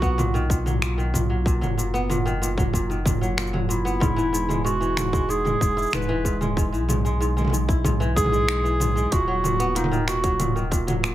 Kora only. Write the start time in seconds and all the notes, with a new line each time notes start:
Already playing: A#2 F#3
0.02 B3
0.18 A#2
0.34 D#3
0.50 A#2
0.66 F#3
0.82 A#2
0.98 D#3
1.14 A#2
1.30 F#3
1.46 A#2
1.61 F#3
1.78 A#2
1.94 B3
2.09 A#2
2.26 D#3
2.42 A#2
2.58 F#3
2.74 A#2
2.90 D#3
3.06 A#2
3.21 F#3
3.37 A#2
3.53 F#3
3.69 A#2
3.85 B3
4.00 G#2
4.16 E3
4.33 G#2
4.49 G#3
4.64 G#2
4.81 E3
4.97 G#2
5.13 G#3
5.29 G#2
5.45 G#3
5.61 G#2
5.77 E4
5.93 G#2
6.09 E3
6.25 G#2
6.41 G#3
6.57 G#2
6.72 E3
6.89 G#2
7.05 G#3
7.20 G#2
7.37 G#3
7.53 G#2
7.68 E4
7.84 G#2
8.00 E3
8.16 G#2
8.32 G#3
8.48 G#2
8.64 E3
8.80 G#2
8.96 G#3
9.12 A#2
9.28 F#3
9.44 A#2
9.60 B3
9.75 A#2
9.91 D#3
10.08 A#2
10.24 F#3
10.39 A#2
10.56 D#3
10.71 A#2
10.87 F#3
11.03 A#2